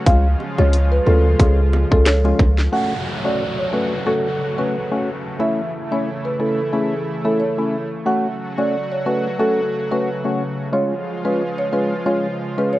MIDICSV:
0, 0, Header, 1, 7, 480
1, 0, Start_track
1, 0, Key_signature, 3, "minor"
1, 0, Tempo, 666667
1, 45, Time_signature, 4, 2, 24, 8
1, 9209, End_track
2, 0, Start_track
2, 0, Title_t, "Marimba"
2, 0, Program_c, 0, 12
2, 46, Note_on_c, 0, 77, 100
2, 232, Note_off_c, 0, 77, 0
2, 421, Note_on_c, 0, 73, 77
2, 503, Note_off_c, 0, 73, 0
2, 660, Note_on_c, 0, 71, 86
2, 742, Note_off_c, 0, 71, 0
2, 766, Note_on_c, 0, 69, 78
2, 870, Note_off_c, 0, 69, 0
2, 1006, Note_on_c, 0, 68, 81
2, 1111, Note_off_c, 0, 68, 0
2, 1380, Note_on_c, 0, 69, 83
2, 1462, Note_off_c, 0, 69, 0
2, 1485, Note_on_c, 0, 73, 87
2, 1837, Note_off_c, 0, 73, 0
2, 1965, Note_on_c, 0, 78, 90
2, 2152, Note_off_c, 0, 78, 0
2, 2339, Note_on_c, 0, 74, 69
2, 2422, Note_off_c, 0, 74, 0
2, 2580, Note_on_c, 0, 73, 74
2, 2662, Note_off_c, 0, 73, 0
2, 2686, Note_on_c, 0, 71, 75
2, 2790, Note_off_c, 0, 71, 0
2, 2926, Note_on_c, 0, 69, 83
2, 3030, Note_off_c, 0, 69, 0
2, 3300, Note_on_c, 0, 71, 73
2, 3382, Note_off_c, 0, 71, 0
2, 3885, Note_on_c, 0, 76, 91
2, 4072, Note_off_c, 0, 76, 0
2, 4260, Note_on_c, 0, 73, 72
2, 4342, Note_off_c, 0, 73, 0
2, 4500, Note_on_c, 0, 71, 74
2, 4582, Note_off_c, 0, 71, 0
2, 4606, Note_on_c, 0, 69, 73
2, 4710, Note_off_c, 0, 69, 0
2, 4846, Note_on_c, 0, 68, 73
2, 4951, Note_off_c, 0, 68, 0
2, 5220, Note_on_c, 0, 69, 75
2, 5302, Note_off_c, 0, 69, 0
2, 5326, Note_on_c, 0, 73, 80
2, 5677, Note_off_c, 0, 73, 0
2, 5806, Note_on_c, 0, 78, 91
2, 5993, Note_off_c, 0, 78, 0
2, 6179, Note_on_c, 0, 74, 71
2, 6262, Note_off_c, 0, 74, 0
2, 6420, Note_on_c, 0, 73, 76
2, 6502, Note_off_c, 0, 73, 0
2, 6525, Note_on_c, 0, 71, 76
2, 6630, Note_off_c, 0, 71, 0
2, 6765, Note_on_c, 0, 69, 80
2, 6870, Note_off_c, 0, 69, 0
2, 7140, Note_on_c, 0, 71, 74
2, 7222, Note_off_c, 0, 71, 0
2, 7725, Note_on_c, 0, 73, 93
2, 7912, Note_off_c, 0, 73, 0
2, 8099, Note_on_c, 0, 71, 69
2, 8181, Note_off_c, 0, 71, 0
2, 8340, Note_on_c, 0, 73, 81
2, 8422, Note_off_c, 0, 73, 0
2, 8445, Note_on_c, 0, 71, 74
2, 8550, Note_off_c, 0, 71, 0
2, 8685, Note_on_c, 0, 73, 75
2, 8790, Note_off_c, 0, 73, 0
2, 9059, Note_on_c, 0, 71, 78
2, 9142, Note_off_c, 0, 71, 0
2, 9165, Note_on_c, 0, 73, 82
2, 9209, Note_off_c, 0, 73, 0
2, 9209, End_track
3, 0, Start_track
3, 0, Title_t, "Synth stab"
3, 0, Program_c, 1, 62
3, 43, Note_on_c, 1, 56, 95
3, 46, Note_on_c, 1, 61, 87
3, 48, Note_on_c, 1, 65, 104
3, 198, Note_off_c, 1, 56, 0
3, 199, Note_off_c, 1, 61, 0
3, 201, Note_off_c, 1, 65, 0
3, 418, Note_on_c, 1, 56, 79
3, 420, Note_on_c, 1, 61, 72
3, 422, Note_on_c, 1, 65, 90
3, 549, Note_off_c, 1, 56, 0
3, 551, Note_off_c, 1, 61, 0
3, 552, Note_off_c, 1, 65, 0
3, 763, Note_on_c, 1, 56, 77
3, 765, Note_on_c, 1, 61, 69
3, 767, Note_on_c, 1, 65, 82
3, 918, Note_off_c, 1, 56, 0
3, 919, Note_off_c, 1, 61, 0
3, 920, Note_off_c, 1, 65, 0
3, 1003, Note_on_c, 1, 56, 94
3, 1005, Note_on_c, 1, 61, 86
3, 1007, Note_on_c, 1, 65, 100
3, 1158, Note_off_c, 1, 56, 0
3, 1159, Note_off_c, 1, 61, 0
3, 1160, Note_off_c, 1, 65, 0
3, 1376, Note_on_c, 1, 56, 80
3, 1378, Note_on_c, 1, 61, 70
3, 1380, Note_on_c, 1, 65, 85
3, 1508, Note_off_c, 1, 56, 0
3, 1510, Note_off_c, 1, 61, 0
3, 1511, Note_off_c, 1, 65, 0
3, 1616, Note_on_c, 1, 56, 77
3, 1618, Note_on_c, 1, 61, 67
3, 1620, Note_on_c, 1, 65, 82
3, 1749, Note_off_c, 1, 56, 0
3, 1749, Note_off_c, 1, 61, 0
3, 1751, Note_off_c, 1, 65, 0
3, 1961, Note_on_c, 1, 57, 89
3, 1964, Note_on_c, 1, 61, 81
3, 1966, Note_on_c, 1, 66, 102
3, 2117, Note_off_c, 1, 57, 0
3, 2119, Note_off_c, 1, 61, 0
3, 2120, Note_off_c, 1, 66, 0
3, 2337, Note_on_c, 1, 57, 77
3, 2339, Note_on_c, 1, 61, 69
3, 2341, Note_on_c, 1, 66, 89
3, 2469, Note_off_c, 1, 57, 0
3, 2470, Note_off_c, 1, 61, 0
3, 2471, Note_off_c, 1, 66, 0
3, 2682, Note_on_c, 1, 57, 74
3, 2684, Note_on_c, 1, 61, 66
3, 2687, Note_on_c, 1, 66, 81
3, 2838, Note_off_c, 1, 57, 0
3, 2839, Note_off_c, 1, 61, 0
3, 2840, Note_off_c, 1, 66, 0
3, 2922, Note_on_c, 1, 57, 90
3, 2924, Note_on_c, 1, 61, 80
3, 2927, Note_on_c, 1, 66, 102
3, 3078, Note_off_c, 1, 57, 0
3, 3079, Note_off_c, 1, 61, 0
3, 3080, Note_off_c, 1, 66, 0
3, 3298, Note_on_c, 1, 57, 77
3, 3300, Note_on_c, 1, 61, 66
3, 3302, Note_on_c, 1, 66, 81
3, 3429, Note_off_c, 1, 57, 0
3, 3430, Note_off_c, 1, 61, 0
3, 3431, Note_off_c, 1, 66, 0
3, 3538, Note_on_c, 1, 57, 74
3, 3539, Note_on_c, 1, 61, 67
3, 3542, Note_on_c, 1, 66, 76
3, 3669, Note_off_c, 1, 57, 0
3, 3670, Note_off_c, 1, 61, 0
3, 3671, Note_off_c, 1, 66, 0
3, 3881, Note_on_c, 1, 57, 90
3, 3884, Note_on_c, 1, 61, 82
3, 3886, Note_on_c, 1, 64, 105
3, 4037, Note_off_c, 1, 57, 0
3, 4039, Note_off_c, 1, 61, 0
3, 4040, Note_off_c, 1, 64, 0
3, 4257, Note_on_c, 1, 57, 79
3, 4259, Note_on_c, 1, 61, 73
3, 4261, Note_on_c, 1, 64, 87
3, 4389, Note_off_c, 1, 57, 0
3, 4390, Note_off_c, 1, 61, 0
3, 4391, Note_off_c, 1, 64, 0
3, 4603, Note_on_c, 1, 57, 74
3, 4605, Note_on_c, 1, 61, 70
3, 4607, Note_on_c, 1, 64, 79
3, 4758, Note_off_c, 1, 57, 0
3, 4759, Note_off_c, 1, 61, 0
3, 4760, Note_off_c, 1, 64, 0
3, 4843, Note_on_c, 1, 57, 92
3, 4845, Note_on_c, 1, 61, 83
3, 4847, Note_on_c, 1, 64, 97
3, 4998, Note_off_c, 1, 57, 0
3, 4999, Note_off_c, 1, 61, 0
3, 5000, Note_off_c, 1, 64, 0
3, 5216, Note_on_c, 1, 57, 76
3, 5218, Note_on_c, 1, 61, 71
3, 5221, Note_on_c, 1, 64, 85
3, 5348, Note_off_c, 1, 57, 0
3, 5349, Note_off_c, 1, 61, 0
3, 5351, Note_off_c, 1, 64, 0
3, 5457, Note_on_c, 1, 57, 75
3, 5459, Note_on_c, 1, 61, 64
3, 5462, Note_on_c, 1, 64, 80
3, 5589, Note_off_c, 1, 57, 0
3, 5590, Note_off_c, 1, 61, 0
3, 5591, Note_off_c, 1, 64, 0
3, 5803, Note_on_c, 1, 57, 91
3, 5805, Note_on_c, 1, 61, 82
3, 5807, Note_on_c, 1, 66, 101
3, 5958, Note_off_c, 1, 57, 0
3, 5959, Note_off_c, 1, 61, 0
3, 5960, Note_off_c, 1, 66, 0
3, 6177, Note_on_c, 1, 57, 78
3, 6179, Note_on_c, 1, 61, 75
3, 6181, Note_on_c, 1, 66, 86
3, 6309, Note_off_c, 1, 57, 0
3, 6310, Note_off_c, 1, 61, 0
3, 6311, Note_off_c, 1, 66, 0
3, 6523, Note_on_c, 1, 57, 72
3, 6525, Note_on_c, 1, 61, 68
3, 6527, Note_on_c, 1, 66, 84
3, 6678, Note_off_c, 1, 57, 0
3, 6679, Note_off_c, 1, 61, 0
3, 6680, Note_off_c, 1, 66, 0
3, 6762, Note_on_c, 1, 57, 92
3, 6764, Note_on_c, 1, 61, 80
3, 6766, Note_on_c, 1, 66, 100
3, 6918, Note_off_c, 1, 57, 0
3, 6918, Note_off_c, 1, 61, 0
3, 6920, Note_off_c, 1, 66, 0
3, 7136, Note_on_c, 1, 57, 74
3, 7139, Note_on_c, 1, 61, 68
3, 7141, Note_on_c, 1, 66, 82
3, 7269, Note_off_c, 1, 57, 0
3, 7270, Note_off_c, 1, 61, 0
3, 7271, Note_off_c, 1, 66, 0
3, 7376, Note_on_c, 1, 57, 74
3, 7379, Note_on_c, 1, 61, 65
3, 7381, Note_on_c, 1, 66, 77
3, 7509, Note_off_c, 1, 57, 0
3, 7510, Note_off_c, 1, 61, 0
3, 7511, Note_off_c, 1, 66, 0
3, 7721, Note_on_c, 1, 56, 95
3, 7724, Note_on_c, 1, 61, 85
3, 7726, Note_on_c, 1, 65, 104
3, 7877, Note_off_c, 1, 56, 0
3, 7879, Note_off_c, 1, 61, 0
3, 7880, Note_off_c, 1, 65, 0
3, 8097, Note_on_c, 1, 56, 76
3, 8099, Note_on_c, 1, 61, 71
3, 8101, Note_on_c, 1, 65, 85
3, 8229, Note_off_c, 1, 56, 0
3, 8230, Note_off_c, 1, 61, 0
3, 8231, Note_off_c, 1, 65, 0
3, 8442, Note_on_c, 1, 56, 74
3, 8444, Note_on_c, 1, 61, 67
3, 8446, Note_on_c, 1, 65, 82
3, 8598, Note_off_c, 1, 56, 0
3, 8599, Note_off_c, 1, 61, 0
3, 8600, Note_off_c, 1, 65, 0
3, 8682, Note_on_c, 1, 56, 89
3, 8684, Note_on_c, 1, 61, 85
3, 8687, Note_on_c, 1, 65, 99
3, 8838, Note_off_c, 1, 56, 0
3, 8839, Note_off_c, 1, 61, 0
3, 8840, Note_off_c, 1, 65, 0
3, 9056, Note_on_c, 1, 56, 79
3, 9059, Note_on_c, 1, 61, 72
3, 9061, Note_on_c, 1, 65, 83
3, 9189, Note_off_c, 1, 56, 0
3, 9190, Note_off_c, 1, 61, 0
3, 9191, Note_off_c, 1, 65, 0
3, 9209, End_track
4, 0, Start_track
4, 0, Title_t, "Analog synth pad"
4, 0, Program_c, 2, 89
4, 0, Note_on_c, 2, 49, 85
4, 45, Note_on_c, 2, 56, 73
4, 46, Note_on_c, 2, 53, 74
4, 46, Note_on_c, 2, 65, 93
4, 1937, Note_off_c, 2, 49, 0
4, 1946, Note_off_c, 2, 53, 0
4, 1946, Note_off_c, 2, 56, 0
4, 1946, Note_off_c, 2, 65, 0
4, 1965, Note_on_c, 2, 49, 81
4, 1965, Note_on_c, 2, 54, 70
4, 1965, Note_on_c, 2, 57, 69
4, 1965, Note_on_c, 2, 66, 86
4, 3866, Note_off_c, 2, 54, 0
4, 3866, Note_off_c, 2, 66, 0
4, 3885, Note_on_c, 2, 52, 70
4, 3886, Note_on_c, 2, 64, 83
4, 5777, Note_off_c, 2, 49, 0
4, 5786, Note_off_c, 2, 52, 0
4, 5786, Note_off_c, 2, 64, 0
4, 5804, Note_on_c, 2, 49, 83
4, 5805, Note_on_c, 2, 54, 73
4, 5805, Note_on_c, 2, 66, 88
4, 7697, Note_off_c, 2, 57, 0
4, 7706, Note_off_c, 2, 54, 0
4, 7706, Note_off_c, 2, 66, 0
4, 7726, Note_on_c, 2, 53, 73
4, 7726, Note_on_c, 2, 56, 72
4, 7726, Note_on_c, 2, 65, 87
4, 9209, Note_off_c, 2, 49, 0
4, 9209, Note_off_c, 2, 53, 0
4, 9209, Note_off_c, 2, 56, 0
4, 9209, Note_off_c, 2, 65, 0
4, 9209, End_track
5, 0, Start_track
5, 0, Title_t, "808-style bass"
5, 0, Program_c, 3, 38
5, 46, Note_on_c, 3, 37, 110
5, 254, Note_off_c, 3, 37, 0
5, 420, Note_on_c, 3, 37, 92
5, 721, Note_off_c, 3, 37, 0
5, 765, Note_on_c, 3, 38, 90
5, 974, Note_off_c, 3, 38, 0
5, 1006, Note_on_c, 3, 37, 104
5, 1332, Note_off_c, 3, 37, 0
5, 1380, Note_on_c, 3, 37, 90
5, 1680, Note_off_c, 3, 37, 0
5, 1723, Note_on_c, 3, 37, 100
5, 1933, Note_off_c, 3, 37, 0
5, 9209, End_track
6, 0, Start_track
6, 0, Title_t, "Downlifter"
6, 0, Program_c, 4, 103
6, 1964, Note_on_c, 4, 60, 77
6, 5805, Note_off_c, 4, 60, 0
6, 9209, End_track
7, 0, Start_track
7, 0, Title_t, "Drums"
7, 45, Note_on_c, 9, 42, 67
7, 46, Note_on_c, 9, 36, 113
7, 47, Note_on_c, 9, 60, 63
7, 117, Note_off_c, 9, 42, 0
7, 118, Note_off_c, 9, 36, 0
7, 119, Note_off_c, 9, 60, 0
7, 287, Note_on_c, 9, 60, 49
7, 359, Note_off_c, 9, 60, 0
7, 419, Note_on_c, 9, 60, 76
7, 491, Note_off_c, 9, 60, 0
7, 526, Note_on_c, 9, 42, 77
7, 598, Note_off_c, 9, 42, 0
7, 767, Note_on_c, 9, 61, 74
7, 839, Note_off_c, 9, 61, 0
7, 1005, Note_on_c, 9, 42, 86
7, 1006, Note_on_c, 9, 36, 94
7, 1007, Note_on_c, 9, 60, 75
7, 1077, Note_off_c, 9, 42, 0
7, 1078, Note_off_c, 9, 36, 0
7, 1079, Note_off_c, 9, 60, 0
7, 1248, Note_on_c, 9, 60, 76
7, 1320, Note_off_c, 9, 60, 0
7, 1380, Note_on_c, 9, 36, 79
7, 1452, Note_off_c, 9, 36, 0
7, 1483, Note_on_c, 9, 42, 81
7, 1485, Note_on_c, 9, 38, 114
7, 1491, Note_on_c, 9, 37, 90
7, 1555, Note_off_c, 9, 42, 0
7, 1557, Note_off_c, 9, 38, 0
7, 1563, Note_off_c, 9, 37, 0
7, 1619, Note_on_c, 9, 60, 52
7, 1691, Note_off_c, 9, 60, 0
7, 1723, Note_on_c, 9, 36, 101
7, 1729, Note_on_c, 9, 61, 80
7, 1795, Note_off_c, 9, 36, 0
7, 1801, Note_off_c, 9, 61, 0
7, 1859, Note_on_c, 9, 38, 65
7, 1931, Note_off_c, 9, 38, 0
7, 9209, End_track
0, 0, End_of_file